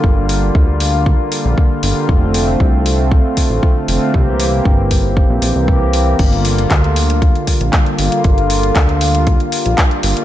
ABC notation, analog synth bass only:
X:1
M:4/4
L:1/16
Q:1/4=117
K:Gdor
V:1 name="Analog synth bass" clef=bass
G,,,4 D,,4- D,, z2 B,,, z2 G,,, z | F,,,4 C,,4- C,, z2 A,,, z2 F,,, z | C,,4 G,,,4- G,,, B,,, B,,, C,,4- C,, | G,,,4 D,,4- D,, z2 B,,, z2 G,,, z |
G,,,4 D,,4- D,, z2 B,,, z2 G,,, z |]